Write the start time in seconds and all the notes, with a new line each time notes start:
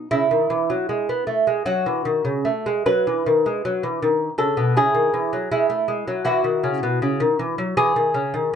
0.11 C#3 E4
0.31 D#3
0.50 E3
0.70 F#3
0.89 G#3
1.09 B3
1.27 A3
1.47 G#3
1.66 F#3 F#4
1.86 E3
2.05 D#3
2.25 C#3
2.45 A3
2.66 G#3
2.86 F#3 B4
3.07 E3
3.26 D#3
3.46 G#3
3.65 F#3
3.83 E3
4.03 D#3
4.38 C#3 A4
4.57 B2
4.77 C#3 E4 G#4
4.95 D#3
5.14 E3
5.33 F#3
5.51 G#3 E4
5.70 A3
5.88 G#3
6.08 F#3
6.25 E3 E4 F#4
6.44 D#3
6.64 C#3
6.83 B2
7.02 C#3
7.20 D#3
7.39 E3
7.58 F#3
7.77 E3 G#4
7.96 D#3
8.14 C#3
8.34 D#3